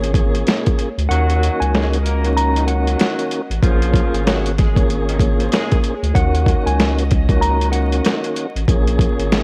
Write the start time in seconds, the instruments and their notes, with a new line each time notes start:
Already playing: analog synth bass G#1, tonewheel organ A#2 A#3 C#4 G#4, string section A#3 G#4 C#5
0.04 closed hi-hat
0.12 tonewheel organ A#2 A#3 C#4 G#4, kick, closed hi-hat
0.35 closed hi-hat
0.47 snare, closed hi-hat
0.66 kick, closed hi-hat
0.79 closed hi-hat
0.98 analog synth bass D2, closed hi-hat
1.08 analog synth bass D#2, tonewheel organ D#3 A#3 C#4 F#4, horn section F#3 F#4, string section C#4 F#4 D#5, clean electric guitar F#5, closed hi-hat
1.30 closed hi-hat
1.43 closed hi-hat
1.60 analog synth bass C#2, clean electric guitar G#5, closed hi-hat
1.74 horn section G#3 G#4, snare, closed hi-hat
1.93 closed hi-hat
2.03 horn section A#3 A#4, closed hi-hat
2.23 tonewheel organ D#3 A#3 C#4 F#4, closed hi-hat
2.37 clean electric guitar A#5, closed hi-hat
2.56 horn section D#3 D#4, closed hi-hat
2.65 tonewheel organ D#3 A#3 C#4 F#4, clean electric guitar F#5, closed hi-hat
2.87 horn section F#3 F#4, closed hi-hat
2.99 horn section F#3 F#4, snare, closed hi-hat
3.19 closed hi-hat
3.31 closed hi-hat
3.50 analog synth bass A1, closed hi-hat
3.62 analog synth bass A#1, tonewheel organ A#2 A#3 C#4 G#4, horn section F3 F4, string section A#3 G#4 C#5, kick, closed hi-hat
3.82 closed hi-hat
3.94 kick, closed hi-hat
4.13 analog synth bass G#1, closed hi-hat
4.26 horn section F#3 F#4, snare, closed hi-hat
4.46 closed hi-hat
4.58 horn section G#3 G#4, kick, snare, closed hi-hat
4.74 tonewheel organ A#2 A#3 C#4 G#4, kick, closed hi-hat
4.90 closed hi-hat
5.08 horn section D#3 D#4, closed hi-hat
5.18 tonewheel organ A#2 A#3 C#4 G#4, kick, closed hi-hat
5.38 horn section F3 F4, closed hi-hat
5.52 horn section G#3 G#4, snare, closed hi-hat
5.72 kick, closed hi-hat
5.84 closed hi-hat
6.03 analog synth bass D2, closed hi-hat
6.13 analog synth bass D#2, tonewheel organ D#3 A#3 C#4 F#4, string section C#4 F#4 D#5, clean electric guitar F#5, kick, closed hi-hat
6.35 closed hi-hat
6.46 kick, closed hi-hat
6.66 analog synth bass C#2, clean electric guitar G#5, closed hi-hat
6.79 snare, closed hi-hat
6.98 closed hi-hat
7.11 kick, closed hi-hat
7.28 tonewheel organ D#3 A#3 C#4 F#4, kick, closed hi-hat
7.41 clean electric guitar A#5, closed hi-hat
7.61 closed hi-hat
7.70 tonewheel organ D#3 A#3 C#4 F#4, clean electric guitar F#5, closed hi-hat
7.93 closed hi-hat
8.05 snare, closed hi-hat
8.24 closed hi-hat
8.36 closed hi-hat
8.56 analog synth bass A1, closed hi-hat
8.67 analog synth bass A#1, tonewheel organ A#2 A#3 C#4 G#4, string section A#3 G#4 C#5, kick, closed hi-hat
8.87 closed hi-hat
8.99 kick, closed hi-hat
9.19 analog synth bass G#1, closed hi-hat
9.32 snare, closed hi-hat